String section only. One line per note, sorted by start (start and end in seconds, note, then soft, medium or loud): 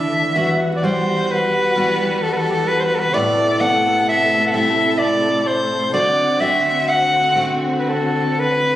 0.00 3.11 E3 medium
0.00 0.32 D4 medium
0.00 0.32 A4 medium
0.35 3.12 G3 medium
0.35 3.12 F#4 medium
3.14 5.91 C3 medium
3.14 5.91 A3 medium
3.14 5.90 A4 medium
5.93 8.76 D3 medium
5.93 8.76 C4 medium
5.93 8.76 F#4 medium